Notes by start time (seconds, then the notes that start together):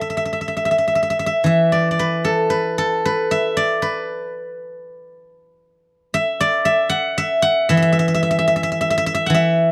Already playing: A4
0.01 E5
0.10 E5
0.17 E5
0.25 E5
0.33 E5
0.41 E5
0.48 E5
0.57 E5
0.65 E5
0.71 E5
0.78 E5
0.88 E5
0.95 E5
1.03 E5
1.10 E5
1.19 E5
1.26 E5
1.44 E3 E5
1.72 D5
1.91 D5
1.99 B4
2.25 A4
2.50 B4
2.78 A4
3.05 B4
3.31 E5
3.57 D5
3.82 B4
6.14 E5
6.40 D5
6.65 E5
6.89 F#5
7.18 E5
7.42 F#5
7.69 E3 E5
7.77 E5
7.82 E5
7.92 E5
7.99 E5
8.08 E5
8.14 E5
8.23 E5
8.31 E5
8.39 E5
8.48 E5
8.56 E5
8.63 E5
8.72 E5
8.81 E5
8.90 E5
8.98 E5
9.06 E5
9.15 E5
9.26 E3 F#5
9.34 E5